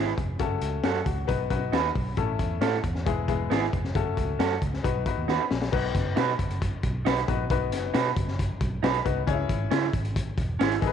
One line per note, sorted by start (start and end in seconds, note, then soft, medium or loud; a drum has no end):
0.00 0.13 G#1 medium
0.00 0.17 G#3 medium
0.00 0.17 B3 medium
0.00 0.17 E4 medium
0.00 0.17 G#4 medium
0.18 0.35 F1 medium
0.18 kick medium
0.18 closed hi-hat medium
0.39 0.57 F#1 loud
0.39 0.99 A3 medium
0.39 0.99 C#4 medium
0.39 0.84 F#4 medium
0.39 0.84 A4 medium
0.39 kick medium
0.39 closed hi-hat medium
0.61 0.79 C#2 medium
0.61 closed hi-hat medium
0.84 1.02 F#2 medium
0.84 0.98 C#4 medium
0.84 0.98 F#4 medium
0.84 1.05 G#4 medium
0.84 0.99 A4 medium
0.84 snare loud
0.84 closed hi-hat medium
1.06 1.24 C#2 medium
1.06 1.26 F#4 medium
1.06 kick medium
1.06 closed hi-hat medium
1.27 1.46 B1 medium
1.27 1.46 B3 medium
1.27 1.46 D#4 medium
1.27 1.46 F#4 medium
1.27 1.46 B4 medium
1.27 kick medium
1.27 closed hi-hat medium
1.50 1.68 B1 medium
1.50 1.95 B3 medium
1.50 1.56 C#4 medium
1.50 1.95 F#4 medium
1.50 1.95 B4 medium
1.50 kick medium
1.50 closed hi-hat medium
1.56 1.98 D#4 medium
1.72 1.90 D#2 loud
1.72 1.87 D#4 medium
1.72 1.87 F#4 medium
1.72 1.88 B4 medium
1.72 snare loud
1.72 closed hi-hat medium
1.95 2.13 B1 medium
1.95 kick medium
1.95 open hi-hat soft
2.17 2.35 A1 loud
2.17 2.76 A3 medium
2.17 2.76 C#4 medium
2.17 2.77 E4 medium
2.17 2.76 A4 medium
2.17 kick medium
2.17 closed hi-hat medium
2.39 2.57 E2 medium
2.39 kick medium
2.39 closed hi-hat medium
2.61 2.79 A2 loud
2.61 2.75 C#4 medium
2.61 2.76 E4 medium
2.61 2.76 A4 medium
2.61 snare loud
2.61 closed hi-hat medium
2.84 3.08 E2 medium
2.84 kick medium
2.84 closed hi-hat medium
2.95 snare soft
3.06 3.24 E1 medium
3.06 3.24 G#3 medium
3.06 3.24 B3 medium
3.06 3.24 E4 medium
3.06 3.24 G#4 medium
3.06 kick loud
3.06 closed hi-hat medium
3.28 3.46 E1 medium
3.28 3.72 G#3 medium
3.28 3.73 B3 medium
3.28 3.73 E4 medium
3.28 3.73 G#4 medium
3.28 kick medium
3.28 closed hi-hat medium
3.50 3.68 G#1 medium
3.50 3.64 B3 medium
3.50 3.65 E4 medium
3.50 3.65 G#4 medium
3.50 snare loud
3.50 closed hi-hat medium
3.73 3.91 F1 medium
3.73 kick medium
3.73 closed hi-hat medium
3.84 snare soft
3.95 4.13 F#1 loud
3.95 4.54 A3 medium
3.95 4.54 C#4 medium
3.95 4.54 F#4 medium
3.95 4.54 A4 medium
3.95 kick loud
3.95 closed hi-hat medium
4.17 4.35 C#2 medium
4.17 kick medium
4.17 closed hi-hat medium
4.39 4.57 F#2 medium
4.39 4.53 C#4 medium
4.39 4.54 F#4 medium
4.39 4.54 A4 medium
4.39 snare loud
4.39 closed hi-hat medium
4.62 4.79 C#2 medium
4.62 kick medium
4.62 closed hi-hat medium
4.74 snare soft
4.83 4.93 B1 medium
4.83 5.01 B3 medium
4.83 5.02 D#4 medium
4.83 5.02 F#4 medium
4.83 5.02 B4 medium
4.83 kick medium
4.83 closed hi-hat medium
4.96 5.04 B1 medium
5.06 5.50 B3 medium
5.06 5.50 D#4 medium
5.06 5.51 F#4 medium
5.06 5.51 B4 medium
5.06 kick medium
5.06 closed hi-hat medium
5.18 5.26 D#2 medium
5.28 5.37 D#2 medium
5.28 5.42 D#4 medium
5.28 5.43 F#4 medium
5.28 5.43 B4 medium
5.28 snare soft
5.51 5.69 A#1 medium
5.51 snare medium
5.62 snare medium
5.72 5.90 B1 loud
5.72 6.31 B3 medium
5.72 6.31 D#4 medium
5.72 6.31 F#4 medium
5.72 6.31 B4 medium
5.72 kick loud
5.72 crash medium
5.95 6.12 F#1 medium
5.95 kick loud
5.95 snare soft
5.95 closed hi-hat medium
6.16 6.35 B2 medium
6.16 6.30 D#4 medium
6.16 6.31 F#4 medium
6.16 6.31 B4 medium
6.16 snare loud
6.16 closed hi-hat medium
6.39 6.74 F#1 medium
6.39 kick medium
6.39 closed hi-hat medium
6.51 closed hi-hat soft
6.62 kick medium
6.62 closed hi-hat medium
6.83 7.01 B1 medium
6.83 kick medium
6.83 closed hi-hat medium
7.05 7.23 B1 medium
7.05 7.19 D#4 medium
7.05 7.20 F#4 medium
7.05 7.20 B4 medium
7.05 snare loud
7.05 closed hi-hat medium
7.16 closed hi-hat soft
7.28 7.46 A#1 medium
7.28 7.43 B3 medium
7.28 7.43 D#4 medium
7.28 7.43 F#4 medium
7.28 7.43 B4 medium
7.28 kick medium
7.28 closed hi-hat medium
7.50 7.73 B1 loud
7.50 8.09 B3 medium
7.50 8.09 D#4 medium
7.50 8.09 F#4 medium
7.50 8.09 B4 medium
7.50 kick loud
7.50 closed hi-hat medium
7.72 7.90 F#1 medium
7.72 snare soft
7.72 closed hi-hat medium
7.94 8.12 B2 medium
7.94 8.08 D#4 medium
7.94 8.08 F#4 medium
7.94 8.09 B4 medium
7.94 snare loud
7.94 closed hi-hat medium
8.17 8.51 F#1 medium
8.17 kick medium
8.17 closed hi-hat medium
8.28 snare soft
8.39 kick medium
8.39 closed hi-hat medium
8.61 8.78 B1 medium
8.61 kick medium
8.61 closed hi-hat medium
8.83 9.00 B1 loud
8.83 8.97 D#4 medium
8.83 8.97 F#4 medium
8.83 8.98 B4 medium
8.83 snare loud
8.83 closed hi-hat medium
8.94 closed hi-hat soft
9.05 9.23 C2 medium
9.05 9.20 B3 medium
9.05 9.20 D#4 medium
9.05 9.20 F#4 medium
9.05 9.20 B4 medium
9.05 kick medium
9.05 closed hi-hat medium
9.27 9.45 C#2 loud
9.27 9.86 C#4 medium
9.27 9.33 D#4 medium
9.27 9.86 G#4 medium
9.27 9.86 C#5 medium
9.27 kick loud
9.27 closed hi-hat medium
9.32 9.89 E4 medium
9.49 9.67 G#1 medium
9.49 kick medium
9.49 closed hi-hat medium
9.71 9.89 C#3 medium
9.71 9.85 C#4 medium
9.71 9.86 E4 medium
9.71 9.86 G#4 medium
9.71 snare loud
9.71 closed hi-hat medium
9.93 10.28 G#1 loud
9.93 kick medium
9.93 closed hi-hat medium
10.05 closed hi-hat soft
10.16 kick loud
10.16 closed hi-hat medium
10.38 10.55 E1 medium
10.38 kick medium
10.38 closed hi-hat medium
10.59 10.78 G#1 medium
10.59 10.73 C#4 medium
10.59 10.74 E4 medium
10.59 10.75 G#4 medium
10.59 snare loud
10.59 closed hi-hat medium
10.71 closed hi-hat medium
10.81 10.93 G#1 medium
10.81 10.93 B3 medium
10.81 10.93 D#4 medium
10.81 10.93 G#4 medium
10.81 10.87 A4 medium
10.81 kick loud
10.81 closed hi-hat medium
10.87 10.93 B4 medium